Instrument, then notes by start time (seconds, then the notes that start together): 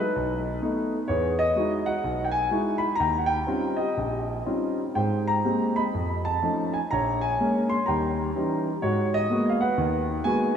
grand piano
Already playing: A4
0.00 D#4 B4
0.16 B1
0.62 A3 B3 D#4
1.08 E2 G#4 C#5
1.39 D#5
1.56 G#3 D#4 E4 F#4
1.86 F#5
2.04 B1
2.24 G5
2.31 G#5
2.51 G#3 D#4 E4 F#4
2.78 B5
2.95 A#5
3.00 D#2 G5
3.19 F#5
3.26 G5
3.47 G3 C4 C#4 D#4 F4
3.77 G4 D#5
3.97 A#1
4.46 G3 C4 C#4 D#4 F4
4.95 G#2 C5 G5
5.28 A#5
5.45 G#3 A#3 C4 G4
5.76 D#5 B5
5.94 F2
6.25 A5
6.42 F3 A3 C#4 D#4
6.74 G#5
6.91 A#1 C#5 A#5
7.21 G#5
7.40 G#3 A#3 C#4
7.69 C6
7.86 D#2 G3 G5 A#5
8.35 E3 G3 C#4 D#4
8.82 G#2 F#4 C#5
9.14 D#5
9.30 G#3 A#3 B3 F#4
9.50 F5
9.61 B4 F#5
9.77 D#2 D#3
10.24 G#3 A#3 B3 F#4 G#5